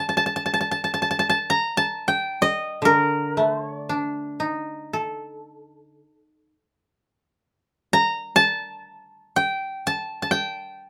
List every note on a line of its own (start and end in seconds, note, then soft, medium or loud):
0.00 0.31 G5 medium
0.09 0.17 A5 soft
0.17 0.26 A5 soft
0.26 0.36 A5 soft
0.36 0.45 A5 soft
0.46 0.53 A5 soft
0.54 0.60 A5 soft
0.61 0.71 A5 soft
0.71 0.84 A5 soft
0.84 0.93 A5 soft
0.94 1.02 A5 soft
1.02 1.10 A5 soft
1.11 1.19 A5 soft
1.19 1.29 A5 soft
1.29 1.56 A5 medium
1.50 1.83 A#5 medium
1.77 3.03 A5 medium
2.08 3.42 G5 medium
2.42 2.91 D#5 medium
2.82 6.00 D3 soft
2.82 3.30 A#4 medium
3.30 3.47 B4 medium
3.37 5.48 A3 soft
3.47 3.64 C5 medium
3.64 3.82 C#5 medium
3.82 5.85 D5 medium
3.89 6.01 D4 soft
4.40 6.52 D#4 soft
4.93 7.06 A4 soft
7.93 8.42 A#5 medium
8.36 9.61 A5 medium
9.36 10.31 G5 medium
9.87 10.22 A5 medium
10.22 10.90 A5 soft
10.31 10.90 G5 medium